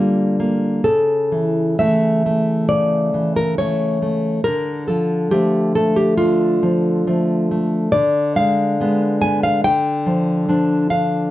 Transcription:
0, 0, Header, 1, 2, 480
1, 0, Start_track
1, 0, Key_signature, -1, "minor"
1, 0, Tempo, 914634
1, 443, Time_signature, 4, 2, 24, 8
1, 1410, Tempo, 872093
1, 3810, Tempo, 858369
1, 6192, End_track
2, 0, Start_track
2, 0, Title_t, "Nylon-string guitar"
2, 0, Program_c, 0, 24
2, 0, Note_on_c, 0, 50, 41
2, 0, Note_on_c, 0, 55, 41
2, 0, Note_on_c, 0, 58, 43
2, 0, Note_on_c, 0, 65, 66
2, 203, Note_off_c, 0, 58, 0
2, 209, Note_on_c, 0, 58, 40
2, 418, Note_off_c, 0, 65, 0
2, 419, Note_off_c, 0, 50, 0
2, 422, Note_off_c, 0, 55, 0
2, 441, Note_on_c, 0, 49, 55
2, 442, Note_on_c, 0, 69, 74
2, 445, Note_off_c, 0, 58, 0
2, 692, Note_on_c, 0, 52, 42
2, 920, Note_off_c, 0, 69, 0
2, 939, Note_on_c, 0, 76, 76
2, 940, Note_off_c, 0, 52, 0
2, 944, Note_on_c, 0, 57, 46
2, 947, Note_on_c, 0, 52, 43
2, 1180, Note_off_c, 0, 57, 0
2, 1186, Note_on_c, 0, 57, 42
2, 1389, Note_off_c, 0, 49, 0
2, 1391, Note_off_c, 0, 76, 0
2, 1411, Note_on_c, 0, 74, 73
2, 1414, Note_on_c, 0, 49, 50
2, 1634, Note_off_c, 0, 52, 0
2, 1660, Note_on_c, 0, 52, 44
2, 1759, Note_off_c, 0, 74, 0
2, 1783, Note_on_c, 0, 70, 71
2, 1897, Note_off_c, 0, 52, 0
2, 1897, Note_off_c, 0, 57, 0
2, 1898, Note_off_c, 0, 70, 0
2, 1903, Note_on_c, 0, 52, 44
2, 1903, Note_on_c, 0, 73, 78
2, 1905, Note_on_c, 0, 57, 45
2, 2139, Note_off_c, 0, 57, 0
2, 2145, Note_on_c, 0, 57, 42
2, 2347, Note_off_c, 0, 49, 0
2, 2350, Note_off_c, 0, 52, 0
2, 2352, Note_off_c, 0, 73, 0
2, 2375, Note_off_c, 0, 57, 0
2, 2376, Note_on_c, 0, 70, 89
2, 2380, Note_on_c, 0, 50, 57
2, 2603, Note_off_c, 0, 70, 0
2, 2615, Note_on_c, 0, 69, 69
2, 2623, Note_on_c, 0, 53, 44
2, 2845, Note_off_c, 0, 69, 0
2, 2849, Note_off_c, 0, 53, 0
2, 2855, Note_on_c, 0, 53, 46
2, 2856, Note_on_c, 0, 67, 81
2, 2858, Note_on_c, 0, 57, 50
2, 3082, Note_off_c, 0, 67, 0
2, 3096, Note_off_c, 0, 57, 0
2, 3098, Note_on_c, 0, 69, 77
2, 3102, Note_on_c, 0, 57, 45
2, 3213, Note_off_c, 0, 69, 0
2, 3214, Note_on_c, 0, 67, 72
2, 3313, Note_off_c, 0, 50, 0
2, 3328, Note_off_c, 0, 67, 0
2, 3330, Note_on_c, 0, 65, 79
2, 3337, Note_on_c, 0, 50, 50
2, 3551, Note_off_c, 0, 53, 0
2, 3579, Note_on_c, 0, 53, 47
2, 3818, Note_off_c, 0, 53, 0
2, 3818, Note_off_c, 0, 57, 0
2, 3824, Note_on_c, 0, 53, 46
2, 3827, Note_on_c, 0, 57, 48
2, 4064, Note_off_c, 0, 57, 0
2, 4070, Note_on_c, 0, 57, 44
2, 4271, Note_off_c, 0, 65, 0
2, 4274, Note_off_c, 0, 50, 0
2, 4276, Note_off_c, 0, 53, 0
2, 4298, Note_on_c, 0, 74, 92
2, 4301, Note_off_c, 0, 57, 0
2, 4303, Note_on_c, 0, 50, 65
2, 4528, Note_off_c, 0, 74, 0
2, 4542, Note_on_c, 0, 56, 49
2, 4546, Note_on_c, 0, 77, 92
2, 4786, Note_off_c, 0, 56, 0
2, 4792, Note_on_c, 0, 56, 46
2, 4797, Note_on_c, 0, 59, 55
2, 5008, Note_off_c, 0, 77, 0
2, 5023, Note_on_c, 0, 80, 92
2, 5027, Note_off_c, 0, 59, 0
2, 5034, Note_on_c, 0, 59, 49
2, 5143, Note_off_c, 0, 80, 0
2, 5145, Note_on_c, 0, 77, 89
2, 5245, Note_off_c, 0, 50, 0
2, 5246, Note_off_c, 0, 56, 0
2, 5260, Note_off_c, 0, 77, 0
2, 5262, Note_on_c, 0, 79, 96
2, 5265, Note_on_c, 0, 50, 66
2, 5268, Note_off_c, 0, 59, 0
2, 5496, Note_on_c, 0, 53, 51
2, 5725, Note_off_c, 0, 53, 0
2, 5732, Note_on_c, 0, 53, 45
2, 5737, Note_on_c, 0, 62, 51
2, 5953, Note_off_c, 0, 79, 0
2, 5961, Note_off_c, 0, 62, 0
2, 5966, Note_on_c, 0, 77, 91
2, 5968, Note_on_c, 0, 62, 48
2, 6186, Note_off_c, 0, 53, 0
2, 6190, Note_off_c, 0, 50, 0
2, 6192, Note_off_c, 0, 62, 0
2, 6192, Note_off_c, 0, 77, 0
2, 6192, End_track
0, 0, End_of_file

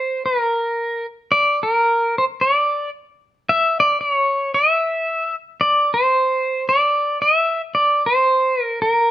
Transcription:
0, 0, Header, 1, 2, 480
1, 0, Start_track
1, 0, Tempo, 537153
1, 1158, Time_signature, 4, 2, 24, 8
1, 8140, End_track
2, 0, Start_track
2, 0, Title_t, "Pedal steel guitar"
2, 0, Program_c, 0, 26
2, 0, Note_on_c, 0, 72, 81
2, 225, Note_off_c, 0, 72, 0
2, 229, Note_on_c, 0, 70, 68
2, 943, Note_off_c, 0, 70, 0
2, 1176, Note_on_c, 0, 74, 101
2, 1457, Note_on_c, 0, 70, 88
2, 1461, Note_off_c, 0, 74, 0
2, 1945, Note_off_c, 0, 70, 0
2, 1951, Note_on_c, 0, 72, 81
2, 2000, Note_off_c, 0, 72, 0
2, 2156, Note_on_c, 0, 74, 77
2, 2586, Note_off_c, 0, 74, 0
2, 3122, Note_on_c, 0, 76, 104
2, 3392, Note_off_c, 0, 76, 0
2, 3396, Note_on_c, 0, 74, 82
2, 3578, Note_off_c, 0, 74, 0
2, 3581, Note_on_c, 0, 73, 73
2, 4057, Note_off_c, 0, 73, 0
2, 4061, Note_on_c, 0, 76, 75
2, 4780, Note_off_c, 0, 76, 0
2, 5012, Note_on_c, 0, 74, 78
2, 5299, Note_off_c, 0, 74, 0
2, 5307, Note_on_c, 0, 72, 80
2, 5977, Note_on_c, 0, 74, 83
2, 5991, Note_off_c, 0, 72, 0
2, 6446, Note_off_c, 0, 74, 0
2, 6450, Note_on_c, 0, 76, 76
2, 6801, Note_off_c, 0, 76, 0
2, 6923, Note_on_c, 0, 74, 79
2, 7206, Note_on_c, 0, 72, 87
2, 7214, Note_off_c, 0, 74, 0
2, 7706, Note_off_c, 0, 72, 0
2, 7706, Note_on_c, 0, 70, 87
2, 7877, Note_off_c, 0, 70, 0
2, 7880, Note_on_c, 0, 70, 73
2, 8140, Note_off_c, 0, 70, 0
2, 8140, End_track
0, 0, End_of_file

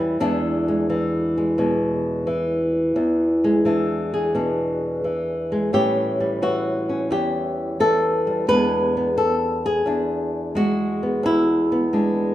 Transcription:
0, 0, Header, 1, 2, 480
1, 0, Start_track
1, 0, Tempo, 690449
1, 139, Time_signature, 4, 2, 24, 8
1, 8584, End_track
2, 0, Start_track
2, 0, Title_t, "Nylon-string guitar"
2, 0, Program_c, 0, 24
2, 0, Note_on_c, 0, 40, 53
2, 0, Note_on_c, 0, 52, 59
2, 0, Note_on_c, 0, 55, 46
2, 0, Note_on_c, 0, 61, 40
2, 0, Note_on_c, 0, 64, 86
2, 124, Note_off_c, 0, 61, 0
2, 134, Note_off_c, 0, 40, 0
2, 140, Note_off_c, 0, 64, 0
2, 141, Note_on_c, 0, 40, 63
2, 142, Note_off_c, 0, 55, 0
2, 145, Note_on_c, 0, 62, 86
2, 147, Note_off_c, 0, 52, 0
2, 150, Note_on_c, 0, 52, 43
2, 152, Note_on_c, 0, 56, 45
2, 472, Note_off_c, 0, 56, 0
2, 475, Note_on_c, 0, 56, 44
2, 620, Note_off_c, 0, 52, 0
2, 623, Note_on_c, 0, 52, 58
2, 953, Note_off_c, 0, 56, 0
2, 956, Note_on_c, 0, 56, 41
2, 1098, Note_on_c, 0, 47, 60
2, 1100, Note_off_c, 0, 56, 0
2, 1103, Note_on_c, 0, 56, 44
2, 1574, Note_off_c, 0, 52, 0
2, 1577, Note_on_c, 0, 52, 55
2, 1579, Note_off_c, 0, 47, 0
2, 2043, Note_off_c, 0, 56, 0
2, 2048, Note_off_c, 0, 40, 0
2, 2057, Note_on_c, 0, 40, 68
2, 2061, Note_off_c, 0, 62, 0
2, 2394, Note_on_c, 0, 56, 60
2, 2536, Note_off_c, 0, 52, 0
2, 2539, Note_on_c, 0, 52, 58
2, 2545, Note_on_c, 0, 62, 52
2, 2876, Note_on_c, 0, 68, 55
2, 3019, Note_off_c, 0, 62, 0
2, 3021, Note_on_c, 0, 47, 54
2, 3028, Note_on_c, 0, 62, 51
2, 3500, Note_off_c, 0, 47, 0
2, 3503, Note_off_c, 0, 52, 0
2, 3506, Note_on_c, 0, 52, 51
2, 3828, Note_off_c, 0, 56, 0
2, 3837, Note_on_c, 0, 56, 48
2, 3965, Note_off_c, 0, 62, 0
2, 3965, Note_off_c, 0, 68, 0
2, 3966, Note_off_c, 0, 56, 0
2, 3978, Note_off_c, 0, 40, 0
2, 3983, Note_off_c, 0, 52, 0
2, 3983, Note_on_c, 0, 45, 63
2, 3986, Note_on_c, 0, 52, 40
2, 3990, Note_on_c, 0, 67, 83
2, 3991, Note_on_c, 0, 55, 42
2, 3998, Note_on_c, 0, 61, 43
2, 4305, Note_off_c, 0, 55, 0
2, 4313, Note_on_c, 0, 55, 46
2, 4461, Note_off_c, 0, 52, 0
2, 4463, Note_on_c, 0, 52, 50
2, 4464, Note_off_c, 0, 67, 0
2, 4468, Note_on_c, 0, 66, 71
2, 4784, Note_off_c, 0, 61, 0
2, 4793, Note_on_c, 0, 61, 39
2, 4940, Note_on_c, 0, 40, 58
2, 4941, Note_off_c, 0, 45, 0
2, 4943, Note_off_c, 0, 66, 0
2, 4948, Note_on_c, 0, 67, 94
2, 5420, Note_off_c, 0, 52, 0
2, 5422, Note_on_c, 0, 52, 55
2, 5423, Note_off_c, 0, 67, 0
2, 5426, Note_on_c, 0, 69, 88
2, 5741, Note_off_c, 0, 55, 0
2, 5749, Note_on_c, 0, 55, 40
2, 5883, Note_off_c, 0, 61, 0
2, 5889, Note_off_c, 0, 40, 0
2, 5897, Note_off_c, 0, 69, 0
2, 5897, Note_on_c, 0, 40, 61
2, 5900, Note_off_c, 0, 55, 0
2, 5900, Note_on_c, 0, 71, 110
2, 5902, Note_off_c, 0, 52, 0
2, 5905, Note_on_c, 0, 56, 46
2, 5909, Note_on_c, 0, 59, 41
2, 5914, Note_on_c, 0, 62, 39
2, 6232, Note_off_c, 0, 59, 0
2, 6235, Note_on_c, 0, 59, 43
2, 6376, Note_off_c, 0, 71, 0
2, 6379, Note_on_c, 0, 69, 81
2, 6400, Note_off_c, 0, 56, 0
2, 6707, Note_off_c, 0, 69, 0
2, 6714, Note_on_c, 0, 68, 72
2, 6851, Note_off_c, 0, 40, 0
2, 6853, Note_on_c, 0, 40, 61
2, 6858, Note_off_c, 0, 62, 0
2, 6861, Note_on_c, 0, 62, 48
2, 7336, Note_on_c, 0, 56, 56
2, 7342, Note_off_c, 0, 62, 0
2, 7345, Note_on_c, 0, 66, 92
2, 7664, Note_off_c, 0, 59, 0
2, 7667, Note_on_c, 0, 59, 43
2, 7669, Note_off_c, 0, 68, 0
2, 7806, Note_off_c, 0, 40, 0
2, 7809, Note_on_c, 0, 40, 67
2, 7826, Note_on_c, 0, 64, 91
2, 8144, Note_off_c, 0, 59, 0
2, 8147, Note_on_c, 0, 59, 43
2, 8291, Note_off_c, 0, 56, 0
2, 8294, Note_on_c, 0, 56, 59
2, 8296, Note_off_c, 0, 66, 0
2, 8298, Note_on_c, 0, 62, 42
2, 8584, Note_off_c, 0, 40, 0
2, 8584, Note_off_c, 0, 56, 0
2, 8584, Note_off_c, 0, 59, 0
2, 8584, Note_off_c, 0, 62, 0
2, 8584, Note_off_c, 0, 64, 0
2, 8584, End_track
0, 0, End_of_file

